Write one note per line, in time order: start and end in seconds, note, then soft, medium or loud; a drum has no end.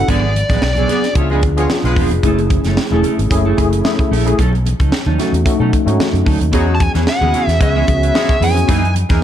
0.00 0.10 C#4 medium
0.00 0.10 E4 medium
0.00 0.10 F#4 medium
0.08 0.41 G#1 medium
0.08 0.30 D3 loud
0.08 0.25 F#3 medium
0.08 0.23 B3 medium
0.08 0.30 B3 medium
0.08 0.23 D4 loud
0.08 0.22 G#4 loud
0.08 0.31 G#4 loud
0.08 0.62 D5 medium
0.08 kick medium
0.08 closed hi-hat medium
0.08 muted conga soft
0.23 muted clean electric guitar stroke soft
0.35 muted clean electric guitar stroke soft
0.35 closed hi-hat medium
0.35 high conga medium
0.49 0.59 A1 medium
0.49 0.61 F#3 soft
0.49 0.60 G#3 medium
0.49 0.62 B3 soft
0.49 0.62 D4 medium
0.49 0.60 F#4 medium
0.49 0.62 G#4 medium
0.49 0.60 B4 medium
0.49 kick medium
0.49 snare soft
0.49 closed hi-hat soft
0.49 high conga medium
0.62 0.83 B1 medium
0.62 1.13 D5 medium
0.62 muted clean electric guitar stroke soft
0.62 snare loud
0.75 0.89 F#3 medium
0.75 0.90 B3 medium
0.75 0.87 D4 medium
0.75 0.90 D4 medium
0.75 0.90 G#4 medium
0.75 0.87 A4 medium
0.75 0.87 C#5 medium
0.75 closed hi-hat soft
0.75 high conga medium
0.75 low conga medium
0.88 1.03 F#3 medium
0.88 1.09 B3 medium
0.88 1.01 B3 medium
0.88 1.04 B3 medium
0.88 1.10 D4 medium
0.88 1.04 D4 medium
0.88 1.10 F#4 medium
0.88 1.10 G#4 medium
0.88 1.01 G#4 medium
0.88 1.04 G#4 medium
0.88 1.01 D5 medium
0.88 snare soft
0.88 closed hi-hat medium
0.88 low conga medium
1.04 muted clean electric guitar stroke soft
1.04 snare soft
1.04 closed hi-hat soft
1.15 1.43 C#2 medium
1.15 1.46 B3 medium
1.15 1.47 D4 medium
1.15 1.47 F4 medium
1.15 1.28 F4 medium
1.15 1.47 G#4 medium
1.15 1.28 C#5 medium
1.15 1.28 E5 medium
1.15 muted clean electric guitar stroke soft
1.15 kick loud
1.15 closed hi-hat medium
1.15 high conga soft
1.30 1.43 F3 medium
1.30 1.40 G#3 medium
1.30 1.43 B3 medium
1.30 1.44 D4 medium
1.30 1.40 F4 medium
1.30 1.44 G#4 medium
1.30 1.40 B4 medium
1.30 muted conga soft
1.41 1.64 D2 medium
1.41 muted clean electric guitar stroke soft
1.41 kick medium
1.41 closed hi-hat medium
1.41 high conga medium
1.57 1.67 G#3 medium
1.57 2.08 B3 medium
1.57 2.08 D4 medium
1.57 2.08 F4 medium
1.57 1.67 F4 medium
1.57 2.08 G#4 loud
1.57 1.67 C#5 loud
1.57 muted clean electric guitar stroke soft
1.57 closed hi-hat medium
1.69 muted clean electric guitar stroke soft
1.69 snare loud
1.69 high conga medium
1.84 1.94 B1 loud
1.84 2.06 G#3 medium
1.84 2.06 F4 medium
1.84 2.06 B4 loud
1.84 muted clean electric guitar stroke soft
1.84 closed hi-hat soft
1.84 muted conga soft
1.84 low conga medium
1.96 2.08 E1 medium
1.96 2.14 F3 medium
1.96 2.12 B3 medium
1.96 2.12 D4 medium
1.96 2.11 G#4 medium
1.96 kick medium
1.96 open hi-hat medium
2.11 2.21 F1 medium
2.11 muted clean electric guitar stroke soft
2.11 closed hi-hat soft
2.23 2.56 F#1 medium
2.23 2.74 A3 medium
2.23 2.41 A3 medium
2.23 2.75 C#4 medium
2.23 2.39 C#4 medium
2.23 2.75 E4 medium
2.23 2.39 E4 medium
2.23 2.75 G#4 medium
2.23 2.39 A4 medium
2.23 kick medium
2.23 closed hi-hat medium
2.23 muted conga soft
2.39 muted clean electric guitar stroke soft
2.39 closed hi-hat soft
2.50 muted clean electric guitar stroke soft
2.50 kick medium
2.50 closed hi-hat medium
2.50 high conga medium
2.64 2.75 F#1 medium
2.64 2.78 A3 medium
2.64 2.78 C#4 medium
2.64 2.78 E4 medium
2.64 2.77 A4 medium
2.64 snare soft
2.64 closed hi-hat soft
2.64 high conga medium
2.77 muted clean electric guitar stroke soft
2.77 snare loud
2.91 3.02 E1 medium
2.91 3.22 A3 medium
2.91 3.03 A3 medium
2.91 3.22 C#4 medium
2.91 3.04 C#4 medium
2.91 3.22 E4 medium
2.91 3.04 E4 medium
2.91 3.22 G#4 medium
2.91 3.04 A4 medium
2.91 muted conga soft
2.91 high conga medium
2.91 low conga medium
3.03 3.18 A3 medium
3.03 3.18 C#4 medium
3.03 3.18 E4 medium
3.03 3.18 A4 medium
3.03 closed hi-hat medium
3.03 low conga medium
3.19 3.28 G#1 medium
3.19 muted clean electric guitar stroke soft
3.19 closed hi-hat medium
3.30 3.52 F#1 loud
3.30 3.51 A3 loud
3.30 3.52 C#4 medium
3.30 3.52 E4 medium
3.30 3.52 G#4 loud
3.30 muted clean electric guitar stroke soft
3.30 kick loud
3.30 closed hi-hat medium
3.30 muted conga soft
3.30 high conga soft
3.45 3.57 A3 medium
3.45 3.57 C#4 medium
3.45 3.58 E4 medium
3.45 3.58 A4 medium
3.45 muted conga soft
3.57 3.79 F#1 medium
3.57 3.78 A3 medium
3.57 3.78 C#4 medium
3.57 3.79 E4 medium
3.57 3.79 G#4 loud
3.57 muted clean electric guitar stroke soft
3.57 kick medium
3.57 closed hi-hat medium
3.57 high conga medium
3.73 muted clean electric guitar stroke soft
3.73 closed hi-hat medium
3.84 4.15 A3 medium
3.84 4.16 C#4 medium
3.84 4.16 E4 medium
3.84 4.16 G#4 medium
3.84 snare loud
3.84 high conga medium
3.99 muted clean electric guitar stroke soft
3.99 kick medium
3.99 closed hi-hat soft
3.99 muted conga soft
3.99 low conga medium
4.11 4.33 A#1 medium
4.11 4.29 A3 medium
4.11 4.26 C#4 medium
4.11 4.26 E4 loud
4.11 4.25 A4 medium
4.11 open hi-hat medium
4.25 4.38 A3 medium
4.25 4.38 C#4 medium
4.25 4.38 E4 medium
4.25 4.39 G#4 loud
4.25 muted clean electric guitar stroke soft
4.25 closed hi-hat medium
4.38 4.71 B1 medium
4.38 4.56 F#3 medium
4.38 4.54 C#4 medium
4.38 4.53 D#4 medium
4.38 4.52 A4 medium
4.38 kick medium
4.38 closed hi-hat medium
4.38 muted conga soft
4.53 muted clean electric guitar stroke soft
4.53 closed hi-hat soft
4.53 muted conga soft
4.66 muted clean electric guitar stroke medium
4.66 closed hi-hat medium
4.66 high conga medium
4.80 4.90 C#2 medium
4.80 4.92 F#3 medium
4.80 4.92 C#4 medium
4.80 4.92 D#4 medium
4.80 4.92 A4 medium
4.80 kick medium
4.80 closed hi-hat medium
4.80 high conga medium
4.92 muted clean electric guitar stroke soft
4.92 snare loud
5.06 5.16 D#2 medium
5.06 5.18 F#3 medium
5.06 5.19 C#4 medium
5.06 5.19 D#4 medium
5.06 5.20 A4 medium
5.06 muted conga soft
5.06 high conga medium
5.06 low conga medium
5.18 5.33 F#3 medium
5.18 5.40 A3 loud
5.18 5.40 C#4 medium
5.18 5.33 C#4 medium
5.18 5.40 D#4 medium
5.18 5.33 D#4 medium
5.18 5.40 F#4 loud
5.18 5.32 A4 medium
5.18 snare soft
5.18 closed hi-hat medium
5.18 low conga medium
5.33 5.43 E2 medium
5.33 muted clean electric guitar stroke soft
5.33 closed hi-hat soft
5.45 5.76 A3 medium
5.45 5.77 C#4 medium
5.45 5.77 D#4 medium
5.45 5.77 F#4 loud
5.45 muted fingered electric bass stroke soft
5.45 muted clean electric guitar stroke soft
5.45 kick loud
5.45 closed hi-hat medium
5.45 muted conga soft
5.45 high conga soft
5.60 5.70 B2 medium
5.60 5.71 F#3 medium
5.60 5.71 C#4 medium
5.60 5.71 D#4 medium
5.60 5.71 A4 medium
5.60 muted conga soft
5.72 muted clean electric guitar stroke soft
5.72 kick medium
5.72 closed hi-hat medium
5.72 high conga medium
5.86 5.96 G#2 medium
5.86 6.37 A3 medium
5.86 6.38 C#4 medium
5.86 6.38 D#4 medium
5.86 6.38 F#4 loud
5.86 muted clean electric guitar stroke soft
5.86 closed hi-hat medium
6.00 snare loud
6.00 muted conga soft
6.00 high conga medium
6.13 6.23 F#2 medium
6.13 muted clean electric guitar stroke soft
6.13 closed hi-hat soft
6.13 low conga medium
6.25 6.38 D2 medium
6.25 6.43 F#3 medium
6.25 6.39 C#4 medium
6.25 6.39 D#4 medium
6.25 6.39 A4 medium
6.25 kick medium
6.25 open hi-hat medium
6.40 6.53 D#2 medium
6.40 muted clean electric guitar stroke soft
6.40 closed hi-hat soft
6.52 6.86 E2 medium
6.52 6.70 E3 medium
6.52 6.75 F#3 loud
6.52 7.04 B3 medium
6.52 6.67 B3 medium
6.52 6.66 C#4 medium
6.52 7.04 C#4 medium
6.52 6.75 D#4 loud
6.52 7.04 F#4 medium
6.52 6.75 F#4 loud
6.52 6.66 G#4 medium
6.52 7.05 G#4 loud
6.52 kick medium
6.52 closed hi-hat medium
6.67 muted clean electric guitar stroke soft
6.67 muted conga soft
6.75 6.80 A5 medium
6.79 6.89 G#5 loud
6.79 muted clean electric guitar stroke soft
6.79 kick medium
6.79 closed hi-hat medium
6.79 high conga medium
6.94 7.05 E2 medium
6.94 7.05 E3 medium
6.94 7.06 B3 medium
6.94 7.06 C#4 medium
6.94 7.04 C#4 medium
6.94 7.06 G#4 medium
6.94 7.05 G#4 medium
6.94 snare soft
6.94 closed hi-hat soft
6.94 high conga medium
7.06 7.58 F#5 medium
7.06 muted clean electric guitar stroke soft
7.06 snare loud
7.20 7.31 D#2 medium
7.20 7.32 E3 medium
7.20 7.31 G#3 medium
7.20 7.51 B3 medium
7.20 7.32 B3 medium
7.20 7.51 C#4 medium
7.20 7.33 C#4 medium
7.20 7.31 E4 medium
7.20 7.52 F#4 medium
7.20 7.33 G#4 medium
7.20 7.52 G#4 medium
7.20 7.31 B4 medium
7.20 high conga medium
7.20 low conga medium
7.33 7.47 E3 medium
7.33 7.45 G#3 medium
7.33 7.48 B3 medium
7.33 7.47 C#4 medium
7.33 7.46 E4 medium
7.33 7.47 G#4 medium
7.33 7.45 C#5 medium
7.33 closed hi-hat medium
7.33 low conga medium
7.47 7.58 E2 medium
7.47 muted clean electric guitar stroke soft
7.47 snare soft
7.47 closed hi-hat soft
7.59 7.82 C#2 loud
7.59 7.81 B3 medium
7.59 7.81 C#4 medium
7.59 7.72 C#4 medium
7.59 7.81 F#4 medium
7.59 7.82 G#4 medium
7.59 7.72 B4 medium
7.59 7.72 E5 loud
7.59 8.45 E5 medium
7.59 muted clean electric guitar stroke soft
7.59 kick loud
7.59 closed hi-hat loud
7.59 muted conga soft
7.59 high conga soft
7.74 7.85 E3 medium
7.74 7.85 G#3 medium
7.74 7.86 B3 medium
7.74 7.86 C#4 medium
7.74 7.85 E4 medium
7.74 7.86 G#4 medium
7.74 7.85 C#5 medium
7.87 8.09 C#2 medium
7.87 8.08 B3 medium
7.87 8.08 C#4 medium
7.87 8.09 F#4 medium
7.87 8.09 G#4 medium
7.87 muted clean electric guitar stroke soft
7.87 kick medium
7.87 closed hi-hat medium
7.87 high conga medium
8.01 8.12 C#4 medium
8.01 8.12 B4 medium
8.01 8.12 E5 medium
8.01 muted clean electric guitar stroke soft
8.01 closed hi-hat medium
8.13 8.36 G#3 loud
8.13 8.45 B3 medium
8.13 8.45 C#4 medium
8.13 8.36 E4 loud
8.13 8.45 F#4 medium
8.13 8.45 G#4 medium
8.13 8.37 C#5 loud
8.13 snare loud
8.13 muted conga soft
8.13 high conga medium
8.29 muted clean electric guitar stroke soft
8.29 kick medium
8.29 closed hi-hat soft
8.29 muted conga soft
8.29 low conga medium
8.41 8.62 F2 medium
8.41 8.58 E3 medium
8.41 8.56 B3 medium
8.41 8.56 C#4 loud
8.41 8.55 G#4 medium
8.41 8.93 G#5 medium
8.41 open hi-hat medium
8.54 8.68 B3 medium
8.54 8.67 C#4 medium
8.54 8.68 F#4 medium
8.54 8.68 G#4 medium
8.54 muted clean electric guitar stroke soft
8.54 closed hi-hat medium
8.67 9.02 F#2 medium
8.67 8.85 E3 medium
8.67 8.90 E3 loud
8.67 8.82 A#3 medium
8.67 8.90 D#4 loud
8.67 8.82 D#4 medium
8.67 8.82 G#4 medium
8.67 8.90 G#4 loud
8.67 kick medium
8.67 closed hi-hat loud
8.83 muted clean electric guitar stroke soft
8.83 closed hi-hat soft
8.83 muted conga soft
8.95 muted clean electric guitar stroke soft
8.95 closed hi-hat medium
8.95 high conga medium
9.09 9.20 E2 medium
9.09 9.19 E3 medium
9.09 9.21 E3 soft
9.09 9.21 A#3 medium
9.09 9.19 D#4 medium
9.09 9.21 D#4 medium
9.09 9.21 G#4 medium
9.09 9.20 A#4 medium
9.09 kick medium
9.09 snare soft
9.09 closed hi-hat medium
9.09 high conga medium